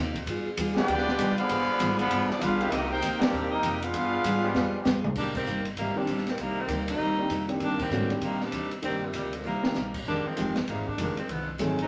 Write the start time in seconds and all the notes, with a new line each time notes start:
Already playing: D#2 C3 A#3 D#4 G4
0.15 kick, ride
0.26 G2 G3 B3 F4 G#4, ride
0.46 muted upright bass stroke
0.57 D#2 G3 B3 F4 G#4, hi-hat pedal, ride
0.75 F3 G#3 B3 D4 F4 G4 B4 D5 G5, snare
0.88 D2 G3 B3 F4 G#4, ride
0.98 snare
1.08 snare
1.16 B1 F3 G3 G#3 B3 F4 G4, hi-hat pedal, ride
1.21 G#4
1.38 D3 F3 B3 G#4 D5 F5 B5, muted upright bass stroke, ride
1.49 G1 F3 G3 G#3 B3 F4 G#4, ride
1.69 muted upright bass stroke
1.79 G#1 G3 B3 F4 G#4, hi-hat pedal, ride
1.98 D3 F3 B3 G#4 D5 F5 B5, ride
2.10 G1 G3 B3 F4 G#4, ride
2.30 F3 B3 D4 F4 G#4 D5, muted upright bass stroke, snare
2.41 B1 G3 B3 D4 F4 G#4 B4 F5, hi-hat pedal, ride
2.60 D#3 A#3 C4 G4, ride
2.70 C2 C3 G3 A#3 C4 D#4 G4 A#4 D#5, ride
2.88 A#3 D#4 G4 A#4 C5 G5
3.02 D2 C3 A#3 D#4 G4, hi-hat pedal, ride
3.19 D#3 G3 A#3 C4 D4 G4 A#4 D5, snare, ride
3.32 D#2 C3 A#3 D#4 G4
3.50 G3 A#3 C4 D#4 G4 A#4 D#5
3.63 F2 C3 A#3 D#4 G4, hi-hat pedal, ride
3.80 B3 D4 F4 G#4 B4 F5, ride
3.93 G2 G3 B3 F4 G#4, ride
4.24 G#2 G3 B3 F4 G#4, hi-hat pedal, ride
4.43 F3 G3 G#3 B3
4.54 F2 G3 B3 F4 G#4, snare
4.84 G2 F3 G3 G#3 B3 F4 G4 G#4, snare, hi-hat pedal
4.95 F2
5.04 D2, mid tom
5.15 C2 C3 D#3 G3 A#3 D4 D#4, kick, crash
5.35 D#3 G3 A#3 C4, kick, crash
5.45 G1 C3 G3 A#3 D#4, hi-hat pedal
5.65 ride
5.77 G#1 C3 D#3 G3 A#3 D#4, ride
5.96 D#3 G3 A#3 C4 D4 G4, muted upright bass stroke
6.07 A#1 C3 G3 A#3 D#4, hi-hat pedal, ride
6.17 snare
6.27 D#3 G3 A#3 C4, snare, ride
6.37 C2 C3 D#3 G3 A#3 D#4, ride
6.60 D#3 G3 A#3 C4
6.68 D2 C3 G3 A#3 D#4, hi-hat pedal, ride
6.88 G3 A#3 C4 D#4, ride
6.99 D#2 C3 G3 A#3 D#4
7.18 D#3 A#3 C4 D4 G4
7.29 F2 C3 G3 A#3 D#4, hi-hat pedal, ride
7.48 D#3 A#3 C4 D4 G4, ride
7.60 G2 C3 D#3 G3 A#3 D4 D#4, ride
7.64 G3
7.79 D#3 G3 C4, kick, crash
7.83 A#3
7.90 G#2 C3 D3 G3 A3 A#3 B3 C#4 D#4 F#4, hi-hat pedal
8.09 D#3 A#3 C4 D4 G4, ride
8.21 A#2 C3 D#3 G3 A#3 D#4, ride
8.25 G3
8.40 G3 A#3 C4 D4, snare
8.52 D#2 C3 G3 A#3 D#4, hi-hat pedal, ride
8.71 ride
8.82 G2 C3 D#3 G3 A#3 C4 D4 D#4 G4, ride
9.05 A#2 C3 D#3 G3
9.13 D2 A#2 C3 D#3 G3 A#3 D#4, hi-hat pedal, ride
9.33 A#2 D3 F3 G#3, ride
9.44 C2 C3 D#3 G3 A#3 D#4
9.64 D#3 A#3 C4 D4 G4, snare
9.74 A#1 C3 G3 A#3 D#4, snare, hi-hat pedal
9.94 kick, crash
10.05 F1 F2 D#3 G3 G#3 A#3 C4 D4
10.26 D#3 F3 G#3 C4, muted upright bass stroke
10.36 G1 F2 D#3 F3 G#3 C4 D#4 G4, hi-hat pedal, ride
10.56 snare, ride
10.67 G#1 F2 C3 D#3 G3 G#3 A#3 C4, ride
10.87 D#3 G3 A#3 D4, kick
10.98 F1 F2 D#3 G3 G#3 A#3 C4 D4, hi-hat pedal, ride
11.17 D#3 F3 G#3 C4, muted upright bass stroke, ride
11.28 C2 F#2 D3 D#3 F3 G#3 A3 B3 C4, ride
11.58 G#1 F#2 D#3 F#3 A3 C4 D#4 G#4, hi-hat pedal, ride
11.79 A3 C4 D#4, ride
11.83 F#3